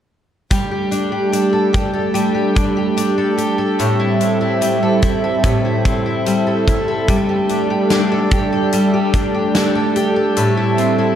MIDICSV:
0, 0, Header, 1, 4, 480
1, 0, Start_track
1, 0, Tempo, 821918
1, 297, Time_signature, 4, 2, 24, 8
1, 6513, End_track
2, 0, Start_track
2, 0, Title_t, "Twelve-string acoustic guitar"
2, 0, Program_c, 0, 25
2, 295, Note_on_c, 0, 55, 70
2, 417, Note_on_c, 0, 67, 46
2, 533, Note_on_c, 0, 62, 45
2, 652, Note_off_c, 0, 67, 0
2, 654, Note_on_c, 0, 67, 46
2, 766, Note_off_c, 0, 62, 0
2, 773, Note_on_c, 0, 62, 48
2, 893, Note_on_c, 0, 69, 50
2, 1008, Note_off_c, 0, 67, 0
2, 1010, Note_on_c, 0, 67, 49
2, 1128, Note_off_c, 0, 69, 0
2, 1130, Note_on_c, 0, 69, 54
2, 1247, Note_off_c, 0, 55, 0
2, 1250, Note_on_c, 0, 55, 66
2, 1367, Note_off_c, 0, 67, 0
2, 1370, Note_on_c, 0, 67, 46
2, 1484, Note_off_c, 0, 62, 0
2, 1491, Note_on_c, 0, 62, 45
2, 1613, Note_off_c, 0, 67, 0
2, 1616, Note_on_c, 0, 67, 48
2, 1727, Note_off_c, 0, 62, 0
2, 1734, Note_on_c, 0, 62, 53
2, 1854, Note_off_c, 0, 69, 0
2, 1856, Note_on_c, 0, 69, 55
2, 1970, Note_off_c, 0, 67, 0
2, 1972, Note_on_c, 0, 67, 50
2, 2090, Note_off_c, 0, 69, 0
2, 2092, Note_on_c, 0, 69, 49
2, 2214, Note_on_c, 0, 45, 69
2, 2264, Note_off_c, 0, 62, 0
2, 2332, Note_off_c, 0, 67, 0
2, 2334, Note_on_c, 0, 64, 50
2, 2455, Note_on_c, 0, 60, 44
2, 2568, Note_off_c, 0, 64, 0
2, 2575, Note_on_c, 0, 64, 49
2, 2692, Note_off_c, 0, 55, 0
2, 2694, Note_on_c, 0, 55, 56
2, 2712, Note_off_c, 0, 69, 0
2, 2819, Note_on_c, 0, 69, 54
2, 2932, Note_off_c, 0, 64, 0
2, 2939, Note_on_c, 0, 64, 52
2, 3057, Note_off_c, 0, 69, 0
2, 3060, Note_on_c, 0, 69, 49
2, 3170, Note_off_c, 0, 45, 0
2, 3177, Note_on_c, 0, 45, 60
2, 3292, Note_off_c, 0, 64, 0
2, 3299, Note_on_c, 0, 64, 49
2, 3412, Note_off_c, 0, 60, 0
2, 3419, Note_on_c, 0, 60, 51
2, 3531, Note_off_c, 0, 64, 0
2, 3538, Note_on_c, 0, 64, 46
2, 3656, Note_off_c, 0, 55, 0
2, 3659, Note_on_c, 0, 55, 54
2, 3775, Note_off_c, 0, 69, 0
2, 3777, Note_on_c, 0, 69, 54
2, 3893, Note_off_c, 0, 64, 0
2, 3900, Note_on_c, 0, 64, 53
2, 4016, Note_off_c, 0, 69, 0
2, 4018, Note_on_c, 0, 69, 50
2, 4136, Note_off_c, 0, 55, 0
2, 4138, Note_on_c, 0, 55, 76
2, 4185, Note_off_c, 0, 45, 0
2, 4186, Note_off_c, 0, 60, 0
2, 4187, Note_off_c, 0, 64, 0
2, 4257, Note_on_c, 0, 67, 51
2, 4275, Note_off_c, 0, 69, 0
2, 4380, Note_on_c, 0, 62, 46
2, 4496, Note_off_c, 0, 67, 0
2, 4498, Note_on_c, 0, 67, 51
2, 4614, Note_off_c, 0, 62, 0
2, 4621, Note_on_c, 0, 62, 51
2, 4740, Note_on_c, 0, 69, 55
2, 4856, Note_off_c, 0, 67, 0
2, 4859, Note_on_c, 0, 67, 54
2, 4977, Note_off_c, 0, 69, 0
2, 4979, Note_on_c, 0, 69, 54
2, 5096, Note_off_c, 0, 55, 0
2, 5098, Note_on_c, 0, 55, 67
2, 5217, Note_off_c, 0, 67, 0
2, 5220, Note_on_c, 0, 67, 49
2, 5332, Note_off_c, 0, 62, 0
2, 5339, Note_on_c, 0, 62, 48
2, 5455, Note_off_c, 0, 67, 0
2, 5458, Note_on_c, 0, 67, 50
2, 5571, Note_off_c, 0, 62, 0
2, 5578, Note_on_c, 0, 62, 57
2, 5694, Note_off_c, 0, 69, 0
2, 5696, Note_on_c, 0, 69, 56
2, 5813, Note_off_c, 0, 67, 0
2, 5815, Note_on_c, 0, 67, 55
2, 5933, Note_off_c, 0, 69, 0
2, 5935, Note_on_c, 0, 69, 52
2, 6053, Note_on_c, 0, 45, 67
2, 6106, Note_off_c, 0, 62, 0
2, 6172, Note_off_c, 0, 67, 0
2, 6174, Note_on_c, 0, 64, 58
2, 6296, Note_on_c, 0, 60, 48
2, 6408, Note_off_c, 0, 64, 0
2, 6415, Note_on_c, 0, 64, 50
2, 6513, Note_off_c, 0, 45, 0
2, 6513, Note_off_c, 0, 55, 0
2, 6513, Note_off_c, 0, 60, 0
2, 6513, Note_off_c, 0, 64, 0
2, 6513, Note_off_c, 0, 69, 0
2, 6513, End_track
3, 0, Start_track
3, 0, Title_t, "Analog synth pad"
3, 0, Program_c, 1, 89
3, 298, Note_on_c, 1, 57, 68
3, 302, Note_on_c, 1, 62, 59
3, 303, Note_on_c, 1, 55, 68
3, 303, Note_on_c, 1, 69, 77
3, 2199, Note_off_c, 1, 57, 0
3, 2200, Note_off_c, 1, 62, 0
3, 2201, Note_off_c, 1, 55, 0
3, 2201, Note_off_c, 1, 69, 0
3, 2215, Note_on_c, 1, 64, 63
3, 2215, Note_on_c, 1, 69, 83
3, 2217, Note_on_c, 1, 60, 64
3, 2219, Note_on_c, 1, 55, 72
3, 4117, Note_off_c, 1, 64, 0
3, 4118, Note_off_c, 1, 60, 0
3, 4119, Note_off_c, 1, 55, 0
3, 4136, Note_on_c, 1, 62, 68
3, 4138, Note_on_c, 1, 57, 66
3, 4140, Note_on_c, 1, 55, 70
3, 6037, Note_off_c, 1, 62, 0
3, 6039, Note_off_c, 1, 55, 0
3, 6039, Note_off_c, 1, 57, 0
3, 6052, Note_on_c, 1, 60, 69
3, 6056, Note_on_c, 1, 55, 74
3, 6057, Note_on_c, 1, 64, 72
3, 6513, Note_off_c, 1, 55, 0
3, 6513, Note_off_c, 1, 60, 0
3, 6513, Note_off_c, 1, 64, 0
3, 6513, Note_off_c, 1, 69, 0
3, 6513, End_track
4, 0, Start_track
4, 0, Title_t, "Drums"
4, 298, Note_on_c, 9, 36, 76
4, 298, Note_on_c, 9, 42, 58
4, 356, Note_off_c, 9, 36, 0
4, 356, Note_off_c, 9, 42, 0
4, 536, Note_on_c, 9, 42, 42
4, 594, Note_off_c, 9, 42, 0
4, 778, Note_on_c, 9, 42, 52
4, 836, Note_off_c, 9, 42, 0
4, 1018, Note_on_c, 9, 36, 67
4, 1018, Note_on_c, 9, 42, 40
4, 1076, Note_off_c, 9, 42, 0
4, 1077, Note_off_c, 9, 36, 0
4, 1255, Note_on_c, 9, 42, 59
4, 1314, Note_off_c, 9, 42, 0
4, 1496, Note_on_c, 9, 42, 38
4, 1498, Note_on_c, 9, 36, 68
4, 1555, Note_off_c, 9, 42, 0
4, 1556, Note_off_c, 9, 36, 0
4, 1737, Note_on_c, 9, 42, 71
4, 1795, Note_off_c, 9, 42, 0
4, 1975, Note_on_c, 9, 42, 43
4, 2034, Note_off_c, 9, 42, 0
4, 2216, Note_on_c, 9, 42, 55
4, 2274, Note_off_c, 9, 42, 0
4, 2456, Note_on_c, 9, 42, 43
4, 2515, Note_off_c, 9, 42, 0
4, 2696, Note_on_c, 9, 42, 57
4, 2755, Note_off_c, 9, 42, 0
4, 2933, Note_on_c, 9, 42, 40
4, 2936, Note_on_c, 9, 36, 62
4, 2992, Note_off_c, 9, 42, 0
4, 2995, Note_off_c, 9, 36, 0
4, 3174, Note_on_c, 9, 42, 58
4, 3176, Note_on_c, 9, 36, 77
4, 3233, Note_off_c, 9, 42, 0
4, 3234, Note_off_c, 9, 36, 0
4, 3418, Note_on_c, 9, 36, 65
4, 3418, Note_on_c, 9, 42, 44
4, 3476, Note_off_c, 9, 36, 0
4, 3476, Note_off_c, 9, 42, 0
4, 3657, Note_on_c, 9, 42, 72
4, 3715, Note_off_c, 9, 42, 0
4, 3898, Note_on_c, 9, 36, 70
4, 3898, Note_on_c, 9, 42, 45
4, 3957, Note_off_c, 9, 36, 0
4, 3957, Note_off_c, 9, 42, 0
4, 4137, Note_on_c, 9, 36, 80
4, 4139, Note_on_c, 9, 42, 61
4, 4196, Note_off_c, 9, 36, 0
4, 4197, Note_off_c, 9, 42, 0
4, 4376, Note_on_c, 9, 42, 45
4, 4434, Note_off_c, 9, 42, 0
4, 4615, Note_on_c, 9, 42, 53
4, 4616, Note_on_c, 9, 38, 81
4, 4673, Note_off_c, 9, 42, 0
4, 4674, Note_off_c, 9, 38, 0
4, 4853, Note_on_c, 9, 42, 42
4, 4856, Note_on_c, 9, 36, 75
4, 4911, Note_off_c, 9, 42, 0
4, 4915, Note_off_c, 9, 36, 0
4, 5095, Note_on_c, 9, 42, 55
4, 5154, Note_off_c, 9, 42, 0
4, 5335, Note_on_c, 9, 42, 41
4, 5336, Note_on_c, 9, 36, 66
4, 5393, Note_off_c, 9, 42, 0
4, 5395, Note_off_c, 9, 36, 0
4, 5576, Note_on_c, 9, 38, 96
4, 5577, Note_on_c, 9, 42, 73
4, 5635, Note_off_c, 9, 38, 0
4, 5635, Note_off_c, 9, 42, 0
4, 5815, Note_on_c, 9, 42, 44
4, 5873, Note_off_c, 9, 42, 0
4, 6053, Note_on_c, 9, 42, 61
4, 6112, Note_off_c, 9, 42, 0
4, 6295, Note_on_c, 9, 42, 44
4, 6354, Note_off_c, 9, 42, 0
4, 6513, End_track
0, 0, End_of_file